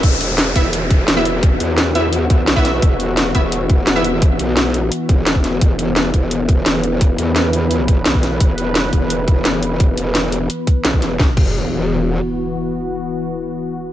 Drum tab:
CC |----------------|----------------|----------------|----------------|
HH |x-x-x-x-x-x-x-x-|x-x-x-x-x-x-x-x-|x-x-x-x-x-x-x-x-|x-x-x-x-x-x-x-x-|
SD |----o-------o---|----o-------o-o-|----o-------o---|----o-------o-o-|
BD |o-----o---o-----|o---------o--o--|o-----o---o-----|o---------o--o--|

CC |----------------|----------------|----------------|----------------|
HH |x-x-x-x-x-x-x-x-|x-x-x-x-x-x-x-x-|x-x-x-x-x-x-x-x-|x-x-x-x-x-x-x-x-|
SD |----o-------o---|----o-------o-o-|----o-------o---|----o-------o-o-|
BD |o-----o---o-----|o---------o--o--|o-----o---o-----|o---------o--o--|

CC |--x-------------|----------------|
HH |----------------|----------------|
SD |o---------------|----------------|
BD |o-o-------------|----------------|